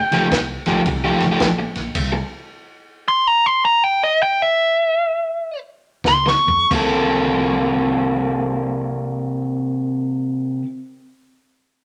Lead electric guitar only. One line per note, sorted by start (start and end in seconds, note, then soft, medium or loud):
0.00 0.48 G5 loud
3.08 3.27 C6 loud
3.27 3.46 A#5 medium
3.46 3.63 C6 loud
3.65 3.84 A#5 loud
3.84 4.01 G5 medium
4.04 4.21 D#5 medium
4.23 4.42 G5 medium
4.42 5.59 E5 medium
6.08 6.27 C6 loud
6.29 6.71 C#6 medium